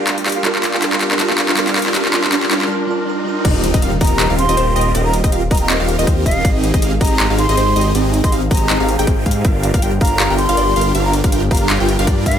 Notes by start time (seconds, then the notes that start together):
Already playing: G3 D4 F4 A#4, riser
0.07 D4 F4 G4 A#4 G5, clap, closed hi-hat
0.17 D4, closed hi-hat
0.26 D4 F4 G4 A#4 F5, clap, closed hi-hat
0.29 closed hi-hat
0.32 F4, closed hi-hat
0.43 G3 D4 F4 G4 A#4 F5, clap, closed hi-hat
0.55 F4, clap
0.63 F5, clap, closed hi-hat
0.74 D4 F4 G4 A#4 F5, clap
0.80 G3 D4 F4 G4 A#4 F5, clap, closed hi-hat
0.84 A#4
0.92 F4, clap
1.01 F5, clap, closed hi-hat
1.11 D4 F4 G4 A#4 F5, clap
1.18 G3 D4 F4 G4 A#4 F5, clap, closed hi-hat
1.22 A#4
1.30 F4, clap
1.38 F5, clap, closed hi-hat
1.49 D4 F4 G4 A#4 F5, clap
1.55 G3 D4 F4 G4 A#4 F5, clap, closed hi-hat
1.67 F4, clap, closed hi-hat
1.76 F5, clap, closed hi-hat
1.79 closed hi-hat
1.82 closed hi-hat
1.86 D4 F4 G4 A#4 F5, clap
1.93 G3 D4 F4 G4 A#4 F5, clap, closed hi-hat
1.97 A#4
2.05 F4, clap
2.12 G3 D4 F4 G4 A#4 F5, clap, closed hi-hat
2.24 F4, clap
2.30 G3 D4 F4 G4 A#4 F5, clap, closed hi-hat
2.34 A#4
2.42 F4, clap
2.49 G3 D4 F4 G4 A#4 F5, clap, closed hi-hat
2.53 A#4
2.61 F4, clap
2.68 G3 D4 F4 A#4
2.87 G3 D4 F4 A#4
3.05 G3 D4 F4
3.09 A#4
3.24 G3 D4 F4 A#4
3.45 D#1 C4 F4 G4 A#4 D#5, kick, closed hi-hat, crash, impact
3.64 closed hi-hat
3.74 D#1 C4 F4 G4 A#4 D#5, kick, closed hi-hat
3.82 D#1 C4 F4 G4 A#4 F5, closed hi-hat
4.01 D#1 C4 F4 G4 A#4 D#5 A#5, kick, closed hi-hat
4.04 closed hi-hat
4.07 closed hi-hat
4.20 D#1 C4 F4 G4 A#4 D#5, clap, closed hi-hat
4.30 D#1 C4 F4 G4 A#4 F5
4.39 C6, closed hi-hat
4.49 D#1 C4 F4 G4 A#4 D#5, closed hi-hat
4.57 D#1 C4 F4 G4 A#4 C5, closed hi-hat
4.76 D#1 C4 F4 G4 A#4 D#5, closed hi-hat
4.81 closed hi-hat
4.94 D#1 C4 F4 G4 A#4 D#5, closed hi-hat
5.05 A#5
5.13 closed hi-hat
5.24 D#1 C4 F4 G4 D#5, kick, closed hi-hat
5.32 D#1 C4 F4 G4 A#4 F5, closed hi-hat
5.51 D#1 C4 F4 G4 A#4 D#5 A#5, kick, closed hi-hat
5.55 closed hi-hat
5.57 closed hi-hat
5.61 A#5
5.70 D#1 C4 F4 G4 A#4 D#5, clap, closed hi-hat
5.80 D#1 C4 F4 G4 A#4 F5
5.89 closed hi-hat
5.99 D#1 C4 F4 G4 A#4 D#5, closed hi-hat
6.07 D#2 C5, kick, closed hi-hat
6.26 D#1 C4 F4 G4 A#4 D#5 F5, kick, closed hi-hat
6.31 closed hi-hat
6.45 G#1 C4 G4 G#4 D#5, kick, closed hi-hat
6.64 closed hi-hat
6.74 G#1 D#4 G4 G#4 D#5, kick, closed hi-hat
6.82 G#1 C4 D#4 G4 G#4 F5, closed hi-hat
7.01 G#1 C4 D#4 G4 G#4 D#5 A#5, kick, closed hi-hat
7.05 closed hi-hat
7.07 closed hi-hat
7.19 G#1 C4 D#4 G4 G#4 D#5, clap, closed hi-hat
7.30 G#1 C4 D#4 G4 G#4 F5
7.38 C6, closed hi-hat
7.49 G#1 C4 D#4 G4 G#4 D#5, closed hi-hat
7.57 G#1 C4 D#4 G4 G#4 C5, closed hi-hat
7.76 G#1 C4 D#4 G4 G#4 D#5, closed hi-hat
7.81 closed hi-hat
7.94 G#1 C4 D#4 G4 G#4 D#5, closed hi-hat
8.14 closed hi-hat
8.24 G#1 C4 D#4 G4 G#4 D#5 C6, kick, closed hi-hat
8.32 G#1 C4 D#4 G4 G#4 F5, closed hi-hat
8.51 G#1 C4 D#4 G4 G#4 D#5 A#5, kick, closed hi-hat
8.54 closed hi-hat
8.57 closed hi-hat
8.69 G#1 C4 D#4 G4 G#4 D#5, clap, closed hi-hat
8.80 G#1 C4 D#4 G4 G#4 F5
8.89 closed hi-hat
8.99 G#1 C4 D#4 G4 G#4 G5, closed hi-hat
9.07 G#1 G5, kick, closed hi-hat
9.26 G#2 C4 D#4 G4 G#4 F5, kick, closed hi-hat
9.31 closed hi-hat
9.45 G1 D4 F4 G4 A#4 F5, kick, closed hi-hat
9.63 closed hi-hat
9.74 G1 G4 F5, kick, closed hi-hat
9.82 G1 D4 F4 G4 A#4 G5, closed hi-hat
10.01 G1 D4 F4 G4 A#4 F5 A#5, kick, closed hi-hat
10.05 closed hi-hat
10.07 closed hi-hat
10.20 G1 D4 F4 G4 A#4 F5, clap, closed hi-hat
10.30 G1 D4 F4 G4 A#4 G5
10.38 C6, closed hi-hat
10.49 G1 D4 F4 G4 A#4 F5, closed hi-hat
10.57 G1 D4 F4 G4 A#4 D5, closed hi-hat
10.76 G1 D4 F4 G4 A#4 F5, closed hi-hat
10.81 closed hi-hat
10.95 G1 D4 F4 G4 A#4 F5, closed hi-hat
11.05 A#5
11.13 closed hi-hat
11.24 G1 F4 G4 A#4 F5, kick, closed hi-hat
11.32 G1 D4 F4 G4 A#4 G5, closed hi-hat
11.51 G1 D4 F4 G4 A#4 F5 A#5, kick, closed hi-hat
11.55 closed hi-hat
11.57 closed hi-hat
11.61 A#5
11.70 G1 D4 F4 G4 A#4 F5, clap, closed hi-hat
11.80 G1 D4 F4 G4 A#4 G5
11.89 closed hi-hat
11.99 G1 D4 F4 G4 A#4 F5, closed hi-hat
12.07 G2 D4 F4 G4 A#4 D5, kick, closed hi-hat
12.26 G2 D4 F4 G4 A#4 F5, kick, closed hi-hat
12.31 closed hi-hat